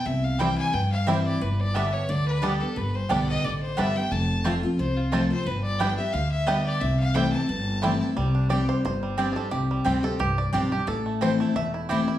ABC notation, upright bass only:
X:1
M:4/4
L:1/8
Q:"Swing" 1/4=178
K:C
V:1 name="Upright bass" clef=bass
C,,4 G,,4 | G,,,4 D,,4 | G,,,2 B,,,2 A,,,2 G,,,2 | F,,,4 C,,4 |
G,,,4 D,,4 | C,,4 G,,,4 | C,,4 G,,,4 | C,,2 D,,2 C,,2 B,,,2 |
A,,,4 E,,,4 |]